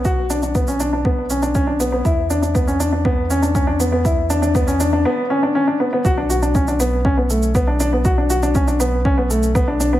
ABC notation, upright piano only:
X:1
M:4/4
L:1/16
Q:1/4=120
K:Bm
V:1 name="Upright piano"
F2 D D B, C D D B,2 C D C D B, B, | E2 D D B, C D D B,2 C D C D B, B, | E2 D D B, C D D B,2 C D C D B, B, | F D F D C D B,2 C B, A,2 B, D D B, |
F D F D C D B,2 C B, A,2 B, D D B, |]